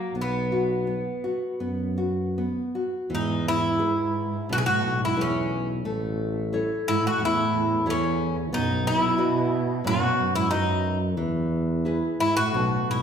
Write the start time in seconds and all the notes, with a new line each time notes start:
Already playing: F#3 A#3
0.13 B1 B3
0.21 B3
0.52 F#4
0.87 B3
1.24 F#4
1.60 F#2 B3
1.98 F#4
2.38 B3
2.75 F#4
3.10 E2 G#2 E3
3.15 D#4
3.45 G#2 E4
3.79 E4 G#4 B4
4.49 B1 B2 F#4
4.56 B2 G#4
4.65 A2 F#4
4.83 B1
5.02 G#2 E4
5.16 E2 E4 G#4 B4
5.21 C#4
5.85 A1 A3
6.53 E4 A4 C#5
6.88 G#2 E4
7.03 A2 F#4
7.20 E2 A2 E3
7.25 E4
7.54 E2
7.86 E2 E4 A4 C#5
7.90 C#4
8.53 B1 F#2 B3 D#4
8.87 B2 E4
9.18 F#4 B4 D#5
9.84 F#2 B2 F#3 F#4
10.17 F#2
10.36 G#2 E4
10.50 F#2 D#4 F#4 B4 D#5
11.17 E2 E3
11.85 E4 G#4 B4
12.19 G#2 E4
12.37 A2 F#4
12.53 B1 B2
12.88 B1 G#2 E4